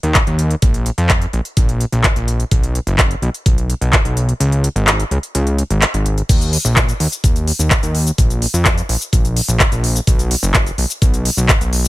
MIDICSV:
0, 0, Header, 1, 3, 480
1, 0, Start_track
1, 0, Key_signature, -6, "minor"
1, 0, Tempo, 472441
1, 635, Time_signature, 4, 2, 24, 8
1, 12070, End_track
2, 0, Start_track
2, 0, Title_t, "Analog synth bass"
2, 0, Program_c, 0, 38
2, 34, Note_on_c, 0, 39, 82
2, 183, Note_off_c, 0, 39, 0
2, 276, Note_on_c, 0, 39, 86
2, 563, Note_off_c, 0, 39, 0
2, 634, Note_on_c, 0, 34, 96
2, 922, Note_off_c, 0, 34, 0
2, 995, Note_on_c, 0, 41, 105
2, 1282, Note_off_c, 0, 41, 0
2, 1355, Note_on_c, 0, 34, 83
2, 1430, Note_off_c, 0, 34, 0
2, 1594, Note_on_c, 0, 34, 81
2, 1882, Note_off_c, 0, 34, 0
2, 1956, Note_on_c, 0, 34, 83
2, 2104, Note_off_c, 0, 34, 0
2, 2196, Note_on_c, 0, 34, 85
2, 2483, Note_off_c, 0, 34, 0
2, 2555, Note_on_c, 0, 35, 95
2, 2843, Note_off_c, 0, 35, 0
2, 2915, Note_on_c, 0, 30, 98
2, 3202, Note_off_c, 0, 30, 0
2, 3273, Note_on_c, 0, 35, 79
2, 3349, Note_off_c, 0, 35, 0
2, 3515, Note_on_c, 0, 35, 80
2, 3802, Note_off_c, 0, 35, 0
2, 3875, Note_on_c, 0, 35, 85
2, 4024, Note_off_c, 0, 35, 0
2, 4115, Note_on_c, 0, 35, 86
2, 4402, Note_off_c, 0, 35, 0
2, 4473, Note_on_c, 0, 37, 97
2, 4762, Note_off_c, 0, 37, 0
2, 4834, Note_on_c, 0, 32, 105
2, 5122, Note_off_c, 0, 32, 0
2, 5194, Note_on_c, 0, 37, 80
2, 5270, Note_off_c, 0, 37, 0
2, 5434, Note_on_c, 0, 37, 79
2, 5722, Note_off_c, 0, 37, 0
2, 5796, Note_on_c, 0, 32, 89
2, 5944, Note_off_c, 0, 32, 0
2, 6035, Note_on_c, 0, 32, 86
2, 6322, Note_off_c, 0, 32, 0
2, 6394, Note_on_c, 0, 39, 99
2, 6682, Note_off_c, 0, 39, 0
2, 6754, Note_on_c, 0, 34, 102
2, 7042, Note_off_c, 0, 34, 0
2, 7114, Note_on_c, 0, 39, 80
2, 7190, Note_off_c, 0, 39, 0
2, 7354, Note_on_c, 0, 39, 80
2, 7642, Note_off_c, 0, 39, 0
2, 7715, Note_on_c, 0, 39, 82
2, 7864, Note_off_c, 0, 39, 0
2, 7955, Note_on_c, 0, 39, 88
2, 8242, Note_off_c, 0, 39, 0
2, 8314, Note_on_c, 0, 34, 96
2, 8602, Note_off_c, 0, 34, 0
2, 8674, Note_on_c, 0, 41, 105
2, 8962, Note_off_c, 0, 41, 0
2, 9034, Note_on_c, 0, 34, 80
2, 9109, Note_off_c, 0, 34, 0
2, 9274, Note_on_c, 0, 34, 77
2, 9562, Note_off_c, 0, 34, 0
2, 9636, Note_on_c, 0, 34, 82
2, 9784, Note_off_c, 0, 34, 0
2, 9876, Note_on_c, 0, 34, 87
2, 10163, Note_off_c, 0, 34, 0
2, 10234, Note_on_c, 0, 35, 99
2, 10522, Note_off_c, 0, 35, 0
2, 10595, Note_on_c, 0, 30, 104
2, 10882, Note_off_c, 0, 30, 0
2, 10954, Note_on_c, 0, 35, 78
2, 11029, Note_off_c, 0, 35, 0
2, 11194, Note_on_c, 0, 35, 82
2, 11482, Note_off_c, 0, 35, 0
2, 11555, Note_on_c, 0, 35, 83
2, 11704, Note_off_c, 0, 35, 0
2, 11795, Note_on_c, 0, 35, 87
2, 12070, Note_off_c, 0, 35, 0
2, 12070, End_track
3, 0, Start_track
3, 0, Title_t, "Drums"
3, 33, Note_on_c, 9, 42, 36
3, 135, Note_off_c, 9, 42, 0
3, 149, Note_on_c, 9, 39, 107
3, 152, Note_on_c, 9, 42, 85
3, 154, Note_on_c, 9, 36, 112
3, 250, Note_off_c, 9, 39, 0
3, 254, Note_off_c, 9, 42, 0
3, 255, Note_off_c, 9, 36, 0
3, 274, Note_on_c, 9, 42, 37
3, 376, Note_off_c, 9, 42, 0
3, 393, Note_on_c, 9, 42, 61
3, 495, Note_off_c, 9, 42, 0
3, 513, Note_on_c, 9, 42, 37
3, 615, Note_off_c, 9, 42, 0
3, 632, Note_on_c, 9, 42, 85
3, 634, Note_on_c, 9, 36, 108
3, 733, Note_off_c, 9, 42, 0
3, 736, Note_off_c, 9, 36, 0
3, 754, Note_on_c, 9, 42, 38
3, 855, Note_off_c, 9, 42, 0
3, 873, Note_on_c, 9, 42, 63
3, 974, Note_off_c, 9, 42, 0
3, 994, Note_on_c, 9, 42, 38
3, 1096, Note_off_c, 9, 42, 0
3, 1110, Note_on_c, 9, 39, 109
3, 1114, Note_on_c, 9, 36, 109
3, 1114, Note_on_c, 9, 42, 88
3, 1211, Note_off_c, 9, 39, 0
3, 1215, Note_off_c, 9, 42, 0
3, 1216, Note_off_c, 9, 36, 0
3, 1235, Note_on_c, 9, 42, 36
3, 1337, Note_off_c, 9, 42, 0
3, 1354, Note_on_c, 9, 42, 35
3, 1456, Note_off_c, 9, 42, 0
3, 1474, Note_on_c, 9, 42, 39
3, 1576, Note_off_c, 9, 42, 0
3, 1593, Note_on_c, 9, 42, 91
3, 1594, Note_on_c, 9, 36, 107
3, 1694, Note_off_c, 9, 42, 0
3, 1696, Note_off_c, 9, 36, 0
3, 1715, Note_on_c, 9, 42, 38
3, 1817, Note_off_c, 9, 42, 0
3, 1834, Note_on_c, 9, 42, 60
3, 1936, Note_off_c, 9, 42, 0
3, 1956, Note_on_c, 9, 42, 38
3, 2057, Note_off_c, 9, 42, 0
3, 2071, Note_on_c, 9, 39, 108
3, 2074, Note_on_c, 9, 36, 107
3, 2074, Note_on_c, 9, 42, 89
3, 2172, Note_off_c, 9, 39, 0
3, 2176, Note_off_c, 9, 36, 0
3, 2176, Note_off_c, 9, 42, 0
3, 2196, Note_on_c, 9, 42, 39
3, 2298, Note_off_c, 9, 42, 0
3, 2315, Note_on_c, 9, 42, 61
3, 2417, Note_off_c, 9, 42, 0
3, 2436, Note_on_c, 9, 42, 38
3, 2537, Note_off_c, 9, 42, 0
3, 2555, Note_on_c, 9, 36, 108
3, 2555, Note_on_c, 9, 42, 91
3, 2656, Note_off_c, 9, 36, 0
3, 2657, Note_off_c, 9, 42, 0
3, 2676, Note_on_c, 9, 42, 39
3, 2778, Note_off_c, 9, 42, 0
3, 2796, Note_on_c, 9, 42, 62
3, 2897, Note_off_c, 9, 42, 0
3, 2916, Note_on_c, 9, 42, 39
3, 3018, Note_off_c, 9, 42, 0
3, 3032, Note_on_c, 9, 39, 113
3, 3035, Note_on_c, 9, 36, 107
3, 3036, Note_on_c, 9, 42, 91
3, 3133, Note_off_c, 9, 39, 0
3, 3136, Note_off_c, 9, 36, 0
3, 3137, Note_off_c, 9, 42, 0
3, 3157, Note_on_c, 9, 42, 39
3, 3259, Note_off_c, 9, 42, 0
3, 3276, Note_on_c, 9, 42, 37
3, 3378, Note_off_c, 9, 42, 0
3, 3398, Note_on_c, 9, 42, 39
3, 3499, Note_off_c, 9, 42, 0
3, 3515, Note_on_c, 9, 36, 108
3, 3516, Note_on_c, 9, 42, 89
3, 3616, Note_off_c, 9, 36, 0
3, 3618, Note_off_c, 9, 42, 0
3, 3637, Note_on_c, 9, 42, 39
3, 3739, Note_off_c, 9, 42, 0
3, 3756, Note_on_c, 9, 42, 61
3, 3857, Note_off_c, 9, 42, 0
3, 3877, Note_on_c, 9, 42, 41
3, 3979, Note_off_c, 9, 42, 0
3, 3992, Note_on_c, 9, 39, 111
3, 3995, Note_on_c, 9, 36, 105
3, 3996, Note_on_c, 9, 42, 88
3, 4094, Note_off_c, 9, 39, 0
3, 4097, Note_off_c, 9, 36, 0
3, 4098, Note_off_c, 9, 42, 0
3, 4117, Note_on_c, 9, 42, 39
3, 4218, Note_off_c, 9, 42, 0
3, 4235, Note_on_c, 9, 42, 64
3, 4337, Note_off_c, 9, 42, 0
3, 4356, Note_on_c, 9, 42, 38
3, 4457, Note_off_c, 9, 42, 0
3, 4476, Note_on_c, 9, 42, 88
3, 4577, Note_off_c, 9, 42, 0
3, 4596, Note_on_c, 9, 42, 41
3, 4697, Note_off_c, 9, 42, 0
3, 4715, Note_on_c, 9, 42, 67
3, 4816, Note_off_c, 9, 42, 0
3, 4837, Note_on_c, 9, 42, 40
3, 4938, Note_off_c, 9, 42, 0
3, 4951, Note_on_c, 9, 39, 114
3, 4955, Note_on_c, 9, 42, 96
3, 5052, Note_off_c, 9, 39, 0
3, 5056, Note_off_c, 9, 42, 0
3, 5076, Note_on_c, 9, 42, 41
3, 5177, Note_off_c, 9, 42, 0
3, 5195, Note_on_c, 9, 42, 37
3, 5297, Note_off_c, 9, 42, 0
3, 5316, Note_on_c, 9, 42, 38
3, 5417, Note_off_c, 9, 42, 0
3, 5434, Note_on_c, 9, 42, 96
3, 5536, Note_off_c, 9, 42, 0
3, 5555, Note_on_c, 9, 42, 39
3, 5657, Note_off_c, 9, 42, 0
3, 5674, Note_on_c, 9, 42, 64
3, 5776, Note_off_c, 9, 42, 0
3, 5796, Note_on_c, 9, 42, 40
3, 5897, Note_off_c, 9, 42, 0
3, 5911, Note_on_c, 9, 39, 110
3, 5915, Note_on_c, 9, 42, 94
3, 6012, Note_off_c, 9, 39, 0
3, 6016, Note_off_c, 9, 42, 0
3, 6036, Note_on_c, 9, 42, 40
3, 6138, Note_off_c, 9, 42, 0
3, 6154, Note_on_c, 9, 42, 67
3, 6256, Note_off_c, 9, 42, 0
3, 6276, Note_on_c, 9, 42, 39
3, 6377, Note_off_c, 9, 42, 0
3, 6394, Note_on_c, 9, 36, 115
3, 6394, Note_on_c, 9, 42, 91
3, 6394, Note_on_c, 9, 49, 73
3, 6399, Note_on_c, 9, 82, 54
3, 6496, Note_off_c, 9, 36, 0
3, 6496, Note_off_c, 9, 42, 0
3, 6496, Note_off_c, 9, 49, 0
3, 6501, Note_off_c, 9, 82, 0
3, 6515, Note_on_c, 9, 42, 41
3, 6520, Note_on_c, 9, 82, 32
3, 6617, Note_off_c, 9, 42, 0
3, 6621, Note_off_c, 9, 82, 0
3, 6634, Note_on_c, 9, 46, 105
3, 6735, Note_off_c, 9, 46, 0
3, 6755, Note_on_c, 9, 42, 40
3, 6760, Note_on_c, 9, 82, 63
3, 6857, Note_off_c, 9, 42, 0
3, 6861, Note_off_c, 9, 82, 0
3, 6871, Note_on_c, 9, 39, 120
3, 6874, Note_on_c, 9, 36, 114
3, 6875, Note_on_c, 9, 42, 91
3, 6879, Note_on_c, 9, 82, 54
3, 6972, Note_off_c, 9, 39, 0
3, 6976, Note_off_c, 9, 36, 0
3, 6976, Note_off_c, 9, 42, 0
3, 6981, Note_off_c, 9, 82, 0
3, 6996, Note_on_c, 9, 42, 40
3, 7001, Note_on_c, 9, 82, 33
3, 7098, Note_off_c, 9, 42, 0
3, 7102, Note_off_c, 9, 82, 0
3, 7114, Note_on_c, 9, 46, 86
3, 7215, Note_off_c, 9, 46, 0
3, 7235, Note_on_c, 9, 42, 39
3, 7240, Note_on_c, 9, 82, 67
3, 7337, Note_off_c, 9, 42, 0
3, 7341, Note_off_c, 9, 82, 0
3, 7354, Note_on_c, 9, 36, 114
3, 7355, Note_on_c, 9, 42, 91
3, 7359, Note_on_c, 9, 82, 54
3, 7456, Note_off_c, 9, 36, 0
3, 7456, Note_off_c, 9, 42, 0
3, 7461, Note_off_c, 9, 82, 0
3, 7476, Note_on_c, 9, 42, 39
3, 7480, Note_on_c, 9, 82, 31
3, 7577, Note_off_c, 9, 42, 0
3, 7582, Note_off_c, 9, 82, 0
3, 7595, Note_on_c, 9, 46, 99
3, 7696, Note_off_c, 9, 46, 0
3, 7714, Note_on_c, 9, 42, 41
3, 7719, Note_on_c, 9, 82, 63
3, 7816, Note_off_c, 9, 42, 0
3, 7820, Note_off_c, 9, 82, 0
3, 7829, Note_on_c, 9, 39, 118
3, 7833, Note_on_c, 9, 42, 93
3, 7834, Note_on_c, 9, 36, 112
3, 7838, Note_on_c, 9, 82, 54
3, 7931, Note_off_c, 9, 39, 0
3, 7935, Note_off_c, 9, 42, 0
3, 7936, Note_off_c, 9, 36, 0
3, 7939, Note_off_c, 9, 82, 0
3, 7955, Note_on_c, 9, 42, 42
3, 7959, Note_on_c, 9, 82, 34
3, 8056, Note_off_c, 9, 42, 0
3, 8061, Note_off_c, 9, 82, 0
3, 8074, Note_on_c, 9, 46, 84
3, 8175, Note_off_c, 9, 46, 0
3, 8195, Note_on_c, 9, 42, 40
3, 8200, Note_on_c, 9, 82, 65
3, 8297, Note_off_c, 9, 42, 0
3, 8301, Note_off_c, 9, 82, 0
3, 8314, Note_on_c, 9, 36, 119
3, 8314, Note_on_c, 9, 42, 89
3, 8318, Note_on_c, 9, 82, 53
3, 8416, Note_off_c, 9, 36, 0
3, 8416, Note_off_c, 9, 42, 0
3, 8420, Note_off_c, 9, 82, 0
3, 8436, Note_on_c, 9, 42, 39
3, 8441, Note_on_c, 9, 82, 32
3, 8538, Note_off_c, 9, 42, 0
3, 8542, Note_off_c, 9, 82, 0
3, 8554, Note_on_c, 9, 46, 103
3, 8656, Note_off_c, 9, 46, 0
3, 8675, Note_on_c, 9, 42, 37
3, 8679, Note_on_c, 9, 82, 61
3, 8777, Note_off_c, 9, 42, 0
3, 8781, Note_off_c, 9, 82, 0
3, 8790, Note_on_c, 9, 39, 119
3, 8794, Note_on_c, 9, 36, 113
3, 8794, Note_on_c, 9, 42, 89
3, 8798, Note_on_c, 9, 82, 51
3, 8891, Note_off_c, 9, 39, 0
3, 8895, Note_off_c, 9, 36, 0
3, 8895, Note_off_c, 9, 42, 0
3, 8900, Note_off_c, 9, 82, 0
3, 8916, Note_on_c, 9, 42, 37
3, 8920, Note_on_c, 9, 82, 31
3, 9018, Note_off_c, 9, 42, 0
3, 9022, Note_off_c, 9, 82, 0
3, 9035, Note_on_c, 9, 46, 92
3, 9136, Note_off_c, 9, 46, 0
3, 9155, Note_on_c, 9, 42, 41
3, 9160, Note_on_c, 9, 82, 63
3, 9257, Note_off_c, 9, 42, 0
3, 9261, Note_off_c, 9, 82, 0
3, 9274, Note_on_c, 9, 36, 113
3, 9275, Note_on_c, 9, 42, 92
3, 9279, Note_on_c, 9, 82, 54
3, 9376, Note_off_c, 9, 36, 0
3, 9376, Note_off_c, 9, 42, 0
3, 9381, Note_off_c, 9, 82, 0
3, 9396, Note_on_c, 9, 42, 40
3, 9401, Note_on_c, 9, 82, 31
3, 9498, Note_off_c, 9, 42, 0
3, 9502, Note_off_c, 9, 82, 0
3, 9515, Note_on_c, 9, 46, 101
3, 9617, Note_off_c, 9, 46, 0
3, 9636, Note_on_c, 9, 42, 39
3, 9640, Note_on_c, 9, 82, 64
3, 9737, Note_off_c, 9, 42, 0
3, 9742, Note_off_c, 9, 82, 0
3, 9751, Note_on_c, 9, 39, 123
3, 9754, Note_on_c, 9, 36, 115
3, 9755, Note_on_c, 9, 42, 90
3, 9759, Note_on_c, 9, 82, 49
3, 9852, Note_off_c, 9, 39, 0
3, 9856, Note_off_c, 9, 36, 0
3, 9856, Note_off_c, 9, 42, 0
3, 9861, Note_off_c, 9, 82, 0
3, 9875, Note_on_c, 9, 42, 41
3, 9880, Note_on_c, 9, 82, 31
3, 9977, Note_off_c, 9, 42, 0
3, 9981, Note_off_c, 9, 82, 0
3, 9995, Note_on_c, 9, 46, 90
3, 10097, Note_off_c, 9, 46, 0
3, 10116, Note_on_c, 9, 42, 38
3, 10120, Note_on_c, 9, 82, 62
3, 10217, Note_off_c, 9, 42, 0
3, 10222, Note_off_c, 9, 82, 0
3, 10234, Note_on_c, 9, 36, 117
3, 10235, Note_on_c, 9, 42, 90
3, 10239, Note_on_c, 9, 82, 50
3, 10336, Note_off_c, 9, 36, 0
3, 10336, Note_off_c, 9, 42, 0
3, 10341, Note_off_c, 9, 82, 0
3, 10355, Note_on_c, 9, 42, 38
3, 10360, Note_on_c, 9, 82, 32
3, 10457, Note_off_c, 9, 42, 0
3, 10461, Note_off_c, 9, 82, 0
3, 10474, Note_on_c, 9, 46, 112
3, 10576, Note_off_c, 9, 46, 0
3, 10595, Note_on_c, 9, 42, 37
3, 10600, Note_on_c, 9, 82, 62
3, 10697, Note_off_c, 9, 42, 0
3, 10701, Note_off_c, 9, 82, 0
3, 10710, Note_on_c, 9, 39, 116
3, 10714, Note_on_c, 9, 36, 120
3, 10714, Note_on_c, 9, 42, 89
3, 10718, Note_on_c, 9, 82, 51
3, 10811, Note_off_c, 9, 39, 0
3, 10815, Note_off_c, 9, 42, 0
3, 10816, Note_off_c, 9, 36, 0
3, 10820, Note_off_c, 9, 82, 0
3, 10835, Note_on_c, 9, 42, 39
3, 10840, Note_on_c, 9, 82, 31
3, 10937, Note_off_c, 9, 42, 0
3, 10941, Note_off_c, 9, 82, 0
3, 10954, Note_on_c, 9, 46, 92
3, 11056, Note_off_c, 9, 46, 0
3, 11075, Note_on_c, 9, 42, 37
3, 11079, Note_on_c, 9, 82, 63
3, 11177, Note_off_c, 9, 42, 0
3, 11181, Note_off_c, 9, 82, 0
3, 11195, Note_on_c, 9, 36, 121
3, 11195, Note_on_c, 9, 42, 88
3, 11199, Note_on_c, 9, 82, 53
3, 11296, Note_off_c, 9, 36, 0
3, 11296, Note_off_c, 9, 42, 0
3, 11301, Note_off_c, 9, 82, 0
3, 11315, Note_on_c, 9, 42, 37
3, 11319, Note_on_c, 9, 82, 31
3, 11416, Note_off_c, 9, 42, 0
3, 11421, Note_off_c, 9, 82, 0
3, 11434, Note_on_c, 9, 46, 105
3, 11535, Note_off_c, 9, 46, 0
3, 11555, Note_on_c, 9, 42, 38
3, 11560, Note_on_c, 9, 82, 62
3, 11657, Note_off_c, 9, 42, 0
3, 11661, Note_off_c, 9, 82, 0
3, 11671, Note_on_c, 9, 39, 119
3, 11674, Note_on_c, 9, 36, 122
3, 11675, Note_on_c, 9, 42, 86
3, 11679, Note_on_c, 9, 82, 51
3, 11772, Note_off_c, 9, 39, 0
3, 11776, Note_off_c, 9, 36, 0
3, 11776, Note_off_c, 9, 42, 0
3, 11781, Note_off_c, 9, 82, 0
3, 11796, Note_on_c, 9, 42, 38
3, 11801, Note_on_c, 9, 82, 32
3, 11898, Note_off_c, 9, 42, 0
3, 11902, Note_off_c, 9, 82, 0
3, 11915, Note_on_c, 9, 46, 91
3, 12016, Note_off_c, 9, 46, 0
3, 12036, Note_on_c, 9, 42, 38
3, 12070, Note_off_c, 9, 42, 0
3, 12070, End_track
0, 0, End_of_file